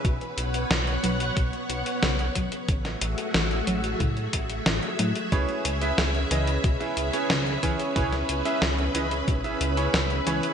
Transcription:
<<
  \new Staff \with { instrumentName = "String machine" } { \time 4/4 \key cis \minor \tempo 4 = 91 << { fis''1 | e''1~ | e''1~ | e''1 | } \\ { <b b' cis''>1 | <a fis' gis'>1 | <cis' b'>1~ | <cis' b'>1 | } >> }
  \new Staff \with { instrumentName = "Electric grand piano" } { \time 4/4 \key cis \minor r1 | r1 | <cis' e' gis' b' cis''>8. <cis' e' gis' b' e''>16 r8 <cis' e' gis' b' dis''>16 r8 <cis' e' gis' b' e''>8 <cis' e' gis' b' cis''>16 r8 <cis' e' gis' b' cis''>8 | <cis' e' gis' b' cis''>8. <cis' e' gis' b' e''>16 r8 <cis' e' gis' b' dis''>16 r8 <cis' e' gis' b' e''>8 <cis' e' gis' b' cis''>16 r8 <cis' e' gis' b' cis''>8 | }
  \new Staff \with { instrumentName = "Synth arpeggio sound" } { \clef bass \time 4/4 \key cis \minor b,16 r8. cis8 fis8 b,16 r8. cis8 fis8 | cis16 r8. e8 fis8 cis16 r8. e8 fis8 | b,16 r8. cis8 e8 b,16 r8. cis8 e8 | b,16 r8. cis8 e8 b,16 r8. cis8 e8 | }
  \new Staff \with { instrumentName = "Analog synth bass" } { \clef bass \time 4/4 \key cis \minor b,,8 b,,8 b,,8 b,,8 b,,8 b,,8 b,,8 b,,8 | a,,8 a,,8 a,,8 a,,8 a,8 a,,8 a,,8 a,8 | cis,8 cis,8 cis,8 cis,8 cis,8 cis,8 cis,8 cis,8 | cis,8 cis,8 cis,8 cis,8 gis,,8 cis,8 cis,8 cis,8 | }
  \new DrumStaff \with { instrumentName = "Drums" } \drummode { \time 4/4 <hh bd>16 hh16 hh16 hh16 <hh sn>16 hh16 hh16 hh16 <hh bd>16 hh16 hh16 hh16 <hh sn>16 hh16 <hh bd>16 hh16 | <hh bd>16 <hh sn>16 hh16 hh16 <hh sn>16 hh16 hh16 hh16 <hh bd>16 hh16 <hh bd>16 hh16 <hh sn>16 hh16 hh16 hh16 | <hh bd>16 hh16 hh16 hh16 <hh sn>16 hh16 hh16 hh16 <hh bd>16 hh16 hh16 hh16 <hh sn>16 hh16 <hh bd>16 hh16 | <hh bd>16 <hh sn>16 hh16 hh16 <hh sn>16 hh16 hh16 hh16 <hh bd>16 hh16 hh16 hh16 <hh sn>16 hh16 hh16 hh16 | }
>>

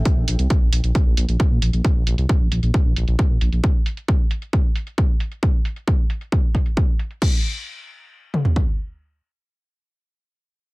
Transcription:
<<
  \new Staff \with { instrumentName = "Detuned saw bass" } { \clef bass \time 4/4 \key a \phrygian \tempo 4 = 134 r16 bes,,16 bes,,16 c,16 r16 bes,,16 bes,,16 bes,,16 r16 bes,,16 bes,,16 bes,,16 r16 bes,16 bes,,16 bes,,16 | r16 bes,,16 bes,,16 c,16 r16 bes,,16 bes,,16 bes,,16 r16 bes,,16 bes,,16 bes,,16 r16 bes,16 bes,,16 bes,,16 | r1 | r1 |
r1 | r1 | }
  \new DrumStaff \with { instrumentName = "Drums" } \drummode { \time 4/4 <hh bd>8 hho16 hh16 <hh bd>8 hho16 hh16 <hh bd>8 hho16 hh16 <hh bd>8 hho16 hh16 | <hh bd>8 hho16 hh16 <hh bd>8 hho16 hh16 <hh bd>8 hho16 hh16 <hh bd>8 hho16 hh16 | <hh bd>8 hho16 hh16 <hh bd>8 hho16 hh16 <hh bd>8 hho16 hh16 <hh bd>8 hho16 hh16 | <hh bd>8 hho16 hh16 <hh bd>8 hho16 hh16 <hh bd>8 <hho bd>16 hh16 <hh bd>8 hho16 hh16 |
<cymc bd>4 r4 r8 toml16 tomfh16 bd4 | r4 r4 r4 r4 | }
>>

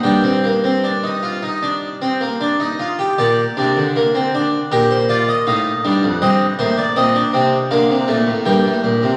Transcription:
<<
  \new Staff \with { instrumentName = "Harpsichord" } { \time 4/4 \key g \minor \tempo 4 = 79 << { g''2.~ g''8 r8 | d''2 bes'16 c''16 d''16 ees''16 f''4 | ees''8 c''16 d''16 ees''4 f''4 g''4 | } \\ { d'16 c'16 bes16 c'16 d'16 ees'16 f'16 ees'16 d'8 c'16 bes16 d'16 ees'16 f'16 g'16 | g'8 d'8 bes16 c'16 d'8 g'8 f'8 ees'8 d'8 | c'8 bes8 c'16 d'16 c'8 bes8 a8 bes4 | } >> }
  \new Staff \with { instrumentName = "Harpsichord" } { \clef bass \time 4/4 \key g \minor g,2.~ g,8 r8 | bes,8 c16 d4~ d16 bes,4 a,8 g,16 f,16 | g,8 a,8 bes,8 c8 d16 c16 bes,16 a,16 g,16 a,16 bes,16 c16 | }
>>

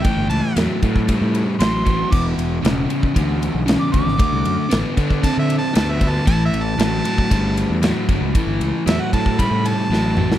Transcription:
<<
  \new Staff \with { instrumentName = "Harmonica" } { \time 4/4 \key a \mixolydian \tempo 4 = 116 g''8 a''8 r2 bis''4 | d'''16 r2. d'''16 d'''8~ | d'''4. r8 \tuplet 3/2 { a''8 e''8 a''8 a''8 e''8 a''8 } | \tuplet 3/2 { a''8 e''8 a''8 } a''2 r4 |
r4 e''16 fis''16 a''8 b''8 a''4. | }
  \new Staff \with { instrumentName = "Overdriven electric guitar" } { \clef bass \time 4/4 \key a \mixolydian <a, e>4 <a, fis>8 <a, fis>8 <a, g>4 <a, fis>8 <a, fis>8 | <e, b,>4 <e, cis>8 <e, cis>8 <e, d>4 <e, cis>8 <e, cis>8 | <d a>4 <d b>8 <d b>8 <d c'>4 <d b>8 <d b>8 | <a, e>4 <a, fis>8 <a, fis>8 <a, g>4 <a, fis>8 <a, fis>8 |
<a, e>4 <a, fis>8 <a, fis>8 <a, g>4 <a, fis>8 <a, fis>8 | }
  \new Staff \with { instrumentName = "Fingered electric bass" } { \clef bass \time 4/4 \key a \mixolydian r16 g,,16 cis,16 r16 e,16 r16 a,8. a,8 r16 a,,4 | e,,8 e,,8 e,,8 r8 d,8. b,,8 r16 d,16 gis,,16 | d,16 c,16 fis,16 r16 a,,16 r16 d8. d8 r16 d,4 | a,,8 a,,8 a,,8 r8 g,,8. e,8 r16 g,,16 cis,16 |
r16 g,,16 cis,16 r16 e,16 r16 a,8. a,8 r16 a,,4 | }
  \new DrumStaff \with { instrumentName = "Drums" } \drummode { \time 4/4 <bd cymr>8 cymr8 <cymr sn>8 <bd cymr>16 bd16 <bd cymr>8 cymr8 <cymr sn>8 <bd cymr>8 | <cymc bd>8 cymr8 <cymr sn>8 cymr16 bd16 <bd cymr>8 cymr8 <cymr sn>8 <bd cymr>16 sn16 | <bd cymr>8 cymr8 <cymr sn>8 <bd cymr>16 bd16 <bd cymr>8 cymr8 <cymr sn>8 <bd cymr>8 | <bd cymr>8 cymr8 <cymr sn>8 cymr16 bd16 <bd cymr>8 cymr8 <cymr sn>8 <bd cymr>8 |
<bd cymr>8 cymr8 <cymr sn>8 <bd cymr>16 bd16 <bd cymr>8 cymr8 sn8 toml16 sn16 | }
>>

